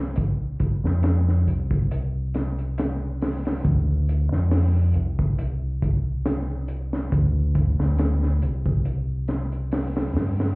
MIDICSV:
0, 0, Header, 1, 3, 480
1, 0, Start_track
1, 0, Tempo, 869565
1, 95, Time_signature, 4, 2, 24, 8
1, 5824, End_track
2, 0, Start_track
2, 0, Title_t, "Fingered electric bass"
2, 0, Program_c, 0, 33
2, 0, Note_on_c, 0, 36, 75
2, 439, Note_off_c, 0, 36, 0
2, 463, Note_on_c, 0, 41, 78
2, 793, Note_off_c, 0, 41, 0
2, 811, Note_on_c, 0, 36, 71
2, 1992, Note_off_c, 0, 36, 0
2, 2012, Note_on_c, 0, 38, 76
2, 2359, Note_off_c, 0, 38, 0
2, 2386, Note_on_c, 0, 41, 79
2, 2714, Note_off_c, 0, 41, 0
2, 2733, Note_on_c, 0, 36, 80
2, 3913, Note_off_c, 0, 36, 0
2, 3930, Note_on_c, 0, 38, 77
2, 4278, Note_off_c, 0, 38, 0
2, 4302, Note_on_c, 0, 38, 84
2, 4632, Note_off_c, 0, 38, 0
2, 4652, Note_on_c, 0, 36, 75
2, 5613, Note_off_c, 0, 36, 0
2, 5613, Note_on_c, 0, 43, 70
2, 5824, Note_off_c, 0, 43, 0
2, 5824, End_track
3, 0, Start_track
3, 0, Title_t, "Drums"
3, 86, Note_on_c, 9, 42, 80
3, 97, Note_on_c, 9, 36, 93
3, 141, Note_off_c, 9, 42, 0
3, 153, Note_off_c, 9, 36, 0
3, 329, Note_on_c, 9, 42, 61
3, 332, Note_on_c, 9, 36, 81
3, 384, Note_off_c, 9, 42, 0
3, 387, Note_off_c, 9, 36, 0
3, 471, Note_on_c, 9, 38, 46
3, 526, Note_off_c, 9, 38, 0
3, 567, Note_on_c, 9, 42, 77
3, 574, Note_on_c, 9, 38, 97
3, 622, Note_off_c, 9, 42, 0
3, 629, Note_off_c, 9, 38, 0
3, 708, Note_on_c, 9, 38, 32
3, 763, Note_off_c, 9, 38, 0
3, 813, Note_on_c, 9, 42, 64
3, 869, Note_off_c, 9, 42, 0
3, 943, Note_on_c, 9, 36, 76
3, 998, Note_off_c, 9, 36, 0
3, 1055, Note_on_c, 9, 42, 85
3, 1110, Note_off_c, 9, 42, 0
3, 1293, Note_on_c, 9, 42, 60
3, 1300, Note_on_c, 9, 38, 58
3, 1348, Note_off_c, 9, 42, 0
3, 1355, Note_off_c, 9, 38, 0
3, 1427, Note_on_c, 9, 42, 36
3, 1482, Note_off_c, 9, 42, 0
3, 1534, Note_on_c, 9, 42, 90
3, 1542, Note_on_c, 9, 38, 101
3, 1589, Note_off_c, 9, 42, 0
3, 1598, Note_off_c, 9, 38, 0
3, 1774, Note_on_c, 9, 46, 65
3, 1779, Note_on_c, 9, 38, 86
3, 1829, Note_off_c, 9, 46, 0
3, 1835, Note_off_c, 9, 38, 0
3, 1904, Note_on_c, 9, 46, 60
3, 1914, Note_on_c, 9, 38, 91
3, 1959, Note_off_c, 9, 46, 0
3, 1969, Note_off_c, 9, 38, 0
3, 2011, Note_on_c, 9, 42, 77
3, 2013, Note_on_c, 9, 36, 104
3, 2066, Note_off_c, 9, 42, 0
3, 2068, Note_off_c, 9, 36, 0
3, 2257, Note_on_c, 9, 42, 65
3, 2312, Note_off_c, 9, 42, 0
3, 2387, Note_on_c, 9, 38, 43
3, 2443, Note_off_c, 9, 38, 0
3, 2490, Note_on_c, 9, 46, 73
3, 2492, Note_on_c, 9, 38, 101
3, 2545, Note_off_c, 9, 46, 0
3, 2547, Note_off_c, 9, 38, 0
3, 2726, Note_on_c, 9, 42, 56
3, 2781, Note_off_c, 9, 42, 0
3, 2864, Note_on_c, 9, 36, 78
3, 2919, Note_off_c, 9, 36, 0
3, 2972, Note_on_c, 9, 42, 81
3, 3027, Note_off_c, 9, 42, 0
3, 3215, Note_on_c, 9, 36, 80
3, 3216, Note_on_c, 9, 42, 65
3, 3270, Note_off_c, 9, 36, 0
3, 3271, Note_off_c, 9, 42, 0
3, 3453, Note_on_c, 9, 38, 119
3, 3454, Note_on_c, 9, 42, 78
3, 3508, Note_off_c, 9, 38, 0
3, 3509, Note_off_c, 9, 42, 0
3, 3687, Note_on_c, 9, 42, 62
3, 3742, Note_off_c, 9, 42, 0
3, 3825, Note_on_c, 9, 38, 55
3, 3881, Note_off_c, 9, 38, 0
3, 3930, Note_on_c, 9, 42, 75
3, 3931, Note_on_c, 9, 36, 91
3, 3985, Note_off_c, 9, 42, 0
3, 3986, Note_off_c, 9, 36, 0
3, 4166, Note_on_c, 9, 42, 65
3, 4169, Note_on_c, 9, 36, 85
3, 4222, Note_off_c, 9, 42, 0
3, 4224, Note_off_c, 9, 36, 0
3, 4305, Note_on_c, 9, 38, 48
3, 4360, Note_off_c, 9, 38, 0
3, 4405, Note_on_c, 9, 42, 75
3, 4413, Note_on_c, 9, 38, 113
3, 4461, Note_off_c, 9, 42, 0
3, 4468, Note_off_c, 9, 38, 0
3, 4541, Note_on_c, 9, 38, 37
3, 4597, Note_off_c, 9, 38, 0
3, 4647, Note_on_c, 9, 42, 63
3, 4702, Note_off_c, 9, 42, 0
3, 4778, Note_on_c, 9, 36, 84
3, 4833, Note_off_c, 9, 36, 0
3, 4886, Note_on_c, 9, 42, 69
3, 4941, Note_off_c, 9, 42, 0
3, 5122, Note_on_c, 9, 42, 64
3, 5126, Note_on_c, 9, 38, 56
3, 5178, Note_off_c, 9, 42, 0
3, 5181, Note_off_c, 9, 38, 0
3, 5255, Note_on_c, 9, 42, 37
3, 5310, Note_off_c, 9, 42, 0
3, 5362, Note_on_c, 9, 46, 65
3, 5369, Note_on_c, 9, 38, 89
3, 5418, Note_off_c, 9, 46, 0
3, 5424, Note_off_c, 9, 38, 0
3, 5496, Note_on_c, 9, 46, 64
3, 5501, Note_on_c, 9, 38, 92
3, 5551, Note_off_c, 9, 46, 0
3, 5556, Note_off_c, 9, 38, 0
3, 5607, Note_on_c, 9, 46, 61
3, 5611, Note_on_c, 9, 38, 97
3, 5662, Note_off_c, 9, 46, 0
3, 5666, Note_off_c, 9, 38, 0
3, 5735, Note_on_c, 9, 46, 64
3, 5741, Note_on_c, 9, 38, 92
3, 5790, Note_off_c, 9, 46, 0
3, 5796, Note_off_c, 9, 38, 0
3, 5824, End_track
0, 0, End_of_file